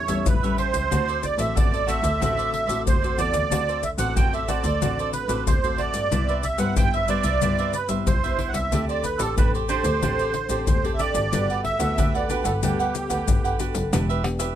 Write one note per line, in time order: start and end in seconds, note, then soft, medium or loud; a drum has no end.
0.00 0.23 A2 medium
0.00 0.29 C#5 medium
0.08 0.25 E2 medium
0.08 0.36 G3 medium
0.08 0.37 C#4 medium
0.08 0.37 E4 medium
0.08 0.41 A4 medium
0.08 0.41 C#5 medium
0.08 0.40 E5 medium
0.08 pandeiro medium
0.08 maracas medium
0.08 surdo soft
0.26 0.68 A1 medium
0.26 0.57 B4 medium
0.26 pandeiro medium
0.26 maracas medium
0.26 surdo loud
0.43 0.87 G3 medium
0.43 0.87 C#4 medium
0.43 0.87 E4 medium
0.43 0.57 A4 soft
0.43 0.58 C#5 medium
0.43 0.58 E5 medium
0.43 pandeiro soft
0.43 maracas soft
0.58 0.89 G4 medium
0.58 0.90 A4 soft
0.58 1.26 C5 loud
0.58 0.90 E5 medium
0.58 pandeiro medium
0.73 0.88 C#2 medium
0.73 pandeiro medium
0.73 maracas medium
0.73 surdo soft
0.91 1.33 D2 loud
0.91 1.53 D3 soft
0.91 1.35 A3 soft
0.91 1.35 C4 soft
0.91 1.06 F#4 soft
0.91 1.35 F#4 medium
0.91 1.06 A4 medium
0.91 1.07 C5 soft
0.91 1.06 D5 soft
0.91 pandeiro medium
0.91 maracas medium
0.91 surdo medium
1.08 1.22 A4 medium
1.08 1.22 C5 medium
1.08 1.22 D5 medium
1.08 pandeiro soft
1.08 maracas soft
1.22 1.41 D5 medium
1.22 muted cavaquinho stroke soft
1.22 pandeiro medium
1.22 maracas medium
1.22 surdo soft
1.38 1.53 A1 medium
1.38 1.83 A3 medium
1.38 1.83 C4 medium
1.38 1.83 F#4 medium
1.38 1.55 A4 soft
1.38 1.54 C5 medium
1.38 1.54 D5 medium
1.38 1.56 E5 medium
1.38 pandeiro medium
1.38 maracas medium
1.55 2.02 A1 medium
1.55 2.18 A2 medium
1.55 1.71 F#4 soft
1.55 1.71 A4 soft
1.55 1.71 C5 soft
1.55 1.71 D5 medium
1.55 1.91 D5 medium
1.55 pandeiro medium
1.55 maracas medium
1.55 surdo loud
1.72 1.86 A4 soft
1.72 1.87 C5 medium
1.72 1.87 D5 medium
1.72 pandeiro soft
1.72 maracas soft
1.87 2.08 A3 medium
1.87 2.08 C4 medium
1.87 2.03 F#4 medium
1.87 2.08 F#4 medium
1.87 2.02 A4 medium
1.87 2.02 C5 medium
1.87 2.01 D5 medium
1.87 2.83 E5 medium
1.87 pandeiro medium
1.87 maracas medium
1.87 surdo soft
2.02 2.18 D2 medium
2.02 2.19 A4 medium
2.02 2.19 C5 medium
2.02 2.19 D5 medium
2.02 pandeiro medium
2.02 maracas medium
2.02 surdo soft
2.20 2.63 A1 medium
2.20 2.83 D3 medium
2.20 2.65 A3 medium
2.20 2.65 C4 medium
2.20 2.36 F#4 soft
2.20 2.65 F#4 medium
2.20 2.36 A4 soft
2.20 2.36 C5 medium
2.20 2.36 D5 medium
2.20 pandeiro medium
2.20 maracas medium
2.20 surdo medium
2.37 2.52 A4 medium
2.37 2.52 C5 medium
2.37 2.52 D5 medium
2.37 pandeiro soft
2.37 maracas soft
2.53 muted cavaquinho stroke soft
2.53 pandeiro medium
2.67 2.86 A1 medium
2.67 2.97 A3 medium
2.67 2.97 C4 medium
2.67 2.97 F#4 medium
2.67 3.01 A4 medium
2.67 3.00 C5 medium
2.67 3.00 D5 medium
2.67 pandeiro medium
2.67 maracas medium
2.67 surdo soft
2.87 3.14 D2 medium
2.87 3.48 A2 medium
2.87 3.20 C5 medium
2.87 pandeiro medium
2.87 maracas medium
2.87 surdo medium
3.02 3.47 A3 medium
3.02 3.47 C4 soft
3.02 3.47 F#4 medium
3.02 3.17 A4 soft
3.02 3.17 C5 medium
3.02 3.17 D5 medium
3.02 pandeiro soft
3.02 maracas soft
3.17 3.32 E2 medium
3.17 3.49 F#4 soft
3.17 3.50 A4 soft
3.17 3.50 C5 soft
3.17 3.86 D5 medium
3.17 3.50 D5 soft
3.17 pandeiro medium
3.17 maracas medium
3.33 3.49 D2 medium
3.33 pandeiro medium
3.33 maracas medium
3.33 surdo soft
3.51 3.93 D2 medium
3.51 4.13 D3 soft
3.51 3.82 A3 soft
3.51 3.82 C4 medium
3.51 3.66 F#4 soft
3.51 3.82 F#4 medium
3.51 3.67 A4 soft
3.51 3.67 C5 soft
3.51 3.67 D5 soft
3.51 pandeiro medium
3.51 maracas medium
3.51 surdo medium
3.68 3.82 A4 medium
3.68 3.82 C5 medium
3.68 3.82 D5 medium
3.68 pandeiro soft
3.68 maracas soft
3.83 3.91 E5 medium
3.83 muted cavaquinho stroke soft
3.83 pandeiro medium
3.83 maracas medium
3.83 surdo soft
3.98 4.13 A1 medium
3.98 4.43 A3 medium
3.98 4.43 C4 medium
3.98 4.43 F#4 medium
3.98 4.15 A4 medium
3.98 4.15 C5 medium
3.98 4.14 D5 medium
3.98 4.14 F#5 medium
3.98 pandeiro medium
3.98 maracas medium
4.16 4.63 A1 medium
4.16 4.79 A2 medium
4.16 4.31 F#4 soft
4.16 4.32 A4 soft
4.16 4.32 C5 medium
4.16 4.32 D5 medium
4.16 4.33 G5 medium
4.16 pandeiro medium
4.16 maracas medium
4.16 surdo medium
4.33 4.47 A4 medium
4.33 4.48 C5 medium
4.33 4.48 D5 medium
4.33 4.50 E5 medium
4.33 pandeiro soft
4.33 maracas soft
4.48 4.68 A3 medium
4.48 4.68 C4 medium
4.48 4.64 F#4 medium
4.48 4.68 F#4 medium
4.48 4.64 A4 medium
4.48 4.63 C5 medium
4.48 5.10 D5 medium
4.48 4.62 D5 medium
4.48 pandeiro medium
4.48 maracas medium
4.48 surdo soft
4.63 4.78 D2 medium
4.63 4.80 A4 medium
4.63 4.80 C5 medium
4.63 4.79 D5 medium
4.63 pandeiro medium
4.63 maracas medium
4.63 surdo soft
4.81 5.23 A1 medium
4.81 5.43 D3 medium
4.81 5.25 A3 medium
4.81 5.25 C4 medium
4.81 4.97 F#4 medium
4.81 5.26 F#4 medium
4.81 4.97 A4 soft
4.81 4.97 C5 medium
4.81 4.97 D5 soft
4.81 pandeiro medium
4.81 maracas medium
4.81 surdo medium
4.99 5.13 A4 medium
4.99 5.13 C5 medium
4.99 5.13 D5 medium
4.99 pandeiro soft
4.99 maracas soft
5.13 5.44 B4 medium
5.13 muted cavaquinho stroke soft
5.13 pandeiro medium
5.13 maracas medium
5.28 5.46 A1 medium
5.28 5.57 A3 medium
5.28 5.57 C4 medium
5.28 5.57 F#4 medium
5.28 5.61 A4 soft
5.28 5.61 C5 medium
5.28 5.61 D5 medium
5.28 pandeiro medium
5.28 maracas medium
5.28 surdo soft
5.47 5.88 D2 medium
5.47 6.09 A2 medium
5.47 5.80 C5 medium
5.47 pandeiro medium
5.47 maracas medium
5.47 surdo medium
5.63 6.07 A3 medium
5.63 6.07 C4 medium
5.63 6.07 F#4 medium
5.63 5.77 A4 medium
5.63 5.78 C5 medium
5.63 5.78 D5 medium
5.63 pandeiro soft
5.63 maracas soft
5.78 6.10 F#4 soft
5.78 6.10 A4 soft
5.78 6.10 C5 soft
5.78 6.46 D5 medium
5.78 6.11 D5 soft
5.78 pandeiro medium
5.93 6.08 G2 medium
5.93 pandeiro medium
5.93 maracas medium
5.93 surdo soft
6.11 6.53 C2 loud
6.11 6.74 C3 soft
6.11 6.42 G3 soft
6.11 6.43 B3 soft
6.11 6.27 E4 soft
6.11 6.43 E4 medium
6.11 6.27 B4 soft
6.11 6.27 C5 soft
6.11 6.27 E5 soft
6.11 pandeiro medium
6.11 maracas medium
6.11 surdo medium
6.28 6.43 B4 medium
6.28 6.42 C5 medium
6.28 6.43 E5 medium
6.28 pandeiro soft
6.28 maracas soft
6.43 6.59 E5 medium
6.43 muted cavaquinho stroke soft
6.43 pandeiro medium
6.43 maracas medium
6.43 surdo soft
6.58 6.73 G2 medium
6.58 7.03 G3 medium
6.58 7.04 B3 medium
6.58 7.04 E4 medium
6.58 6.75 B4 medium
6.58 6.75 C5 soft
6.58 6.75 E5 medium
6.58 6.75 F#5 medium
6.58 pandeiro medium
6.58 maracas medium
6.76 7.23 G2 medium
6.76 7.39 G2 medium
6.76 6.92 E4 medium
6.76 6.93 B4 medium
6.76 6.92 C5 soft
6.76 6.92 E5 medium
6.76 6.94 G5 medium
6.76 pandeiro medium
6.76 maracas medium
6.76 surdo loud
6.94 7.08 B4 medium
6.94 7.08 C5 soft
6.94 7.09 E5 medium
6.94 pandeiro soft
6.94 maracas soft
7.08 7.28 G3 medium
7.08 7.28 B3 soft
7.08 7.24 E4 medium
7.08 7.29 E4 medium
7.08 7.24 B4 medium
7.08 7.24 C5 medium
7.08 7.77 D5 medium
7.08 7.23 E5 medium
7.08 pandeiro medium
7.08 maracas medium
7.24 7.39 C2 medium
7.24 7.40 B4 medium
7.24 7.41 C5 soft
7.24 7.40 E5 medium
7.24 pandeiro medium
7.24 maracas medium
7.24 surdo soft
7.42 7.84 G2 medium
7.42 8.04 C3 medium
7.42 7.73 G3 medium
7.42 7.73 B3 medium
7.42 7.57 E4 soft
7.42 7.73 E4 medium
7.42 7.58 B4 soft
7.42 7.57 C5 soft
7.42 7.58 E5 medium
7.42 pandeiro medium
7.42 maracas medium
7.42 surdo medium
7.59 7.73 B4 medium
7.59 7.72 C5 medium
7.59 7.73 E5 medium
7.59 pandeiro soft
7.59 maracas soft
7.73 7.89 B4 medium
7.73 muted cavaquinho stroke soft
7.73 pandeiro medium
7.73 maracas medium
7.89 8.06 G2 medium
7.89 8.17 G3 medium
7.89 8.17 B3 medium
7.89 8.18 E4 medium
7.89 8.22 B4 soft
7.89 8.22 C5 medium
7.89 8.21 E5 medium
7.89 pandeiro medium
7.89 maracas medium
7.89 surdo soft
8.07 8.48 C2 medium
8.07 8.69 G2 medium
8.07 8.51 C5 medium
8.07 pandeiro medium
8.07 maracas medium
8.07 surdo loud
8.24 8.68 G3 medium
8.24 8.68 B3 medium
8.24 8.68 E4 medium
8.24 8.38 B4 medium
8.24 8.38 C5 medium
8.24 8.39 E5 medium
8.24 pandeiro soft
8.24 maracas soft
8.38 8.70 E4 soft
8.38 8.71 B4 soft
8.38 8.71 C5 soft
8.38 8.71 E5 medium
8.38 pandeiro medium
8.49 8.56 F#5 medium
8.54 8.69 C2 medium
8.54 8.85 E5 medium
8.54 pandeiro medium
8.54 maracas medium
8.54 surdo soft
8.72 9.14 D2 medium
8.72 9.34 D3 soft
8.72 9.03 C4 soft
8.72 8.87 D4 soft
8.72 8.88 G4 soft
8.72 9.03 G4 soft
8.72 9.04 A4 soft
8.72 8.88 C5 soft
8.72 8.88 D5 soft
8.72 pandeiro medium
8.72 maracas medium
8.72 surdo medium
8.89 9.03 G4 medium
8.89 9.04 C5 medium
8.89 9.06 D5 medium
8.89 9.04 D5 medium
8.89 pandeiro soft
8.89 maracas soft
9.03 9.21 B4 medium
9.03 muted cavaquinho stroke soft
9.03 pandeiro medium
9.03 maracas medium
9.03 surdo soft
9.18 9.34 A1 medium
9.18 9.64 C4 medium
9.18 9.64 G4 medium
9.18 9.36 G4 medium
9.18 9.35 A4 medium
9.18 9.64 A4 medium
9.18 9.36 C5 medium
9.18 9.35 D5 medium
9.18 pandeiro medium
9.18 maracas medium
9.37 9.83 A1 medium
9.37 10.00 A2 medium
9.37 9.53 D4 medium
9.37 9.53 G4 soft
9.37 9.52 B4 medium
9.37 9.53 C5 medium
9.37 9.53 D5 medium
9.37 pandeiro medium
9.37 maracas medium
9.37 surdo loud
9.54 9.68 G4 medium
9.54 9.69 C5 medium
9.54 9.69 D5 medium
9.54 pandeiro soft
9.54 maracas soft
9.69 9.97 C4 soft
9.69 9.85 D4 medium
9.69 9.97 G4 medium
9.69 9.85 G4 medium
9.69 9.97 A4 medium
9.69 10.66 C5 medium
9.69 9.84 C5 medium
9.69 9.83 D5 medium
9.69 pandeiro medium
9.69 maracas medium
9.84 9.99 D2 medium
9.84 10.01 G4 medium
9.84 10.01 C5 medium
9.84 10.00 D5 medium
9.84 pandeiro medium
9.84 maracas medium
9.84 surdo soft
10.02 10.44 A1 medium
10.02 10.65 D3 medium
10.02 10.33 C4 medium
10.02 10.18 D4 medium
10.02 10.18 G4 soft
10.02 10.33 G4 medium
10.02 10.34 A4 medium
10.02 10.18 C5 soft
10.02 10.18 D5 soft
10.02 pandeiro medium
10.02 maracas medium
10.02 surdo medium
10.19 10.33 G4 medium
10.19 10.34 C5 medium
10.19 10.34 D5 medium
10.19 pandeiro soft
10.19 maracas soft
10.34 muted cavaquinho stroke soft
10.34 pandeiro medium
10.49 10.67 A1 medium
10.49 10.78 C4 medium
10.49 10.78 G4 medium
10.49 10.83 G4 medium
10.49 10.78 A4 medium
10.49 10.82 C5 medium
10.49 10.82 D5 medium
10.49 pandeiro medium
10.49 maracas medium
10.49 surdo soft
10.67 11.09 D2 medium
10.67 11.30 A2 medium
10.67 10.92 C5 medium
10.67 pandeiro medium
10.67 maracas medium
10.67 surdo loud
10.84 11.28 C4 medium
10.84 11.28 G4 medium
10.84 10.98 G4 medium
10.84 11.28 A4 medium
10.84 10.99 C5 medium
10.84 10.99 D5 medium
10.84 pandeiro soft
10.84 maracas soft
10.94 11.00 E5 medium
10.99 11.31 D4 soft
10.99 11.31 G4 medium
10.99 11.32 C5 soft
10.99 11.61 D5 loud
10.99 11.32 D5 soft
10.99 pandeiro medium
10.99 maracas medium
11.14 11.29 G#1 medium
11.14 pandeiro medium
11.14 maracas medium
11.14 surdo soft
11.32 11.74 G1 medium
11.32 11.94 G3 soft
11.32 11.76 B3 medium
11.32 11.48 D4 soft
11.32 11.76 F#4 medium
11.32 11.48 G4 soft
11.32 11.77 A4 medium
11.32 11.48 B4 soft
11.32 11.48 F#5 soft
11.32 pandeiro medium
11.32 maracas medium
11.32 surdo medium
11.50 11.63 G4 medium
11.50 11.63 B4 medium
11.50 11.64 F#5 medium
11.50 pandeiro soft
11.50 maracas soft
11.64 12.15 E5 medium
11.64 muted cavaquinho stroke soft
11.64 pandeiro medium
11.64 surdo soft
11.79 11.95 D2 medium
11.79 12.24 B3 medium
11.79 12.24 F#4 medium
11.79 11.96 G4 medium
11.79 12.25 A4 medium
11.79 11.96 B4 medium
11.79 11.95 F#5 medium
11.79 pandeiro medium
11.79 maracas medium
11.98 12.44 D2 medium
11.98 12.60 D3 medium
11.98 12.13 D4 soft
11.98 12.13 G4 soft
11.98 12.13 B4 soft
11.98 12.13 F#5 medium
11.98 pandeiro medium
11.98 maracas medium
11.98 surdo medium
12.14 12.29 G4 soft
12.14 12.29 B4 medium
12.14 12.31 D5 medium
12.14 12.29 F#5 medium
12.14 pandeiro soft
12.14 maracas soft
12.29 12.49 B3 medium
12.29 12.45 D4 medium
12.29 12.49 F#4 soft
12.29 12.45 G4 medium
12.29 12.49 A4 medium
12.29 12.45 B4 medium
12.29 12.44 B4 medium
12.29 12.43 F#5 medium
12.29 pandeiro medium
12.29 maracas medium
12.44 12.59 G1 medium
12.44 12.61 G4 medium
12.44 12.53 A4 medium
12.44 12.61 B4 medium
12.44 12.60 F#5 medium
12.44 pandeiro medium
12.44 maracas medium
12.44 surdo soft
12.62 13.04 D2 medium
12.62 13.24 G3 medium
12.62 13.06 B3 medium
12.62 12.78 D4 soft
12.62 12.78 G4 soft
12.62 13.57 G4 medium
12.62 13.07 A4 medium
12.62 12.78 B4 soft
12.62 12.78 F#5 medium
12.62 pandeiro medium
12.62 maracas medium
12.62 surdo medium
12.79 12.94 G4 soft
12.79 12.94 B4 medium
12.79 12.94 F#5 medium
12.79 pandeiro soft
12.79 maracas soft
12.95 muted cavaquinho stroke soft
12.95 pandeiro medium
12.95 maracas medium
13.10 13.27 D2 medium
13.10 13.54 B3 medium
13.10 13.43 G4 medium
13.10 13.55 A4 medium
13.10 13.42 B4 medium
13.10 13.42 F#5 medium
13.10 pandeiro medium
13.10 maracas medium
13.10 surdo soft
13.27 13.70 G1 medium
13.27 13.90 D3 medium
13.27 pandeiro medium
13.27 maracas medium
13.27 surdo loud
13.44 13.59 G4 soft
13.44 13.59 B4 medium
13.44 13.59 F#5 medium
13.44 pandeiro soft
13.44 maracas soft
13.59 13.79 B3 soft
13.59 13.91 D4 soft
13.59 13.79 F#4 soft
13.59 13.91 G4 soft
13.59 13.79 A4 soft
13.59 13.92 B4 soft
13.59 13.92 F#5 medium
13.59 pandeiro medium
13.59 maracas medium
13.75 13.90 F#1 medium
13.75 pandeiro medium
13.75 maracas medium
13.75 surdo soft
13.92 14.55 E1 loud
13.92 14.55 E3 soft
13.92 14.20 B3 medium
13.92 14.08 D4 soft
13.92 14.20 D4 soft
13.92 14.08 G4 soft
13.92 14.21 G4 medium
13.92 14.08 B4 soft
13.92 14.08 E5 medium
13.92 pandeiro medium
13.92 tamborim medium
13.92 maracas medium
13.92 surdo medium
14.09 14.23 G4 medium
14.09 14.23 B4 medium
14.09 14.24 E5 medium
14.09 pandeiro soft
14.09 maracas soft
14.24 14.55 B3 medium
14.24 14.55 D4 medium
14.24 14.55 G4 medium
14.24 pandeiro medium
14.24 tamborim medium
14.39 14.55 G4 soft
14.39 14.55 B4 medium
14.39 14.55 E5 medium
14.39 pandeiro medium
14.39 maracas medium